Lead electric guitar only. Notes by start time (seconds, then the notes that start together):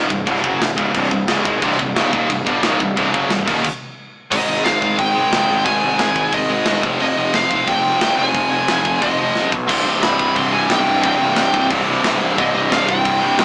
4.32 D#5
4.64 F5
4.98 G5
5.65 G#5
6.34 D#5
7.01 D#5
7.35 F5
7.68 G5
8.19 G#5
9.02 D#5
9.68 C6
10.03 B5
10.36 C6
10.52 G#5
10.69 G5
11.03 G5
12.39 D#5
12.55 D#5
12.72 F5
12.88 G5
13.39 G5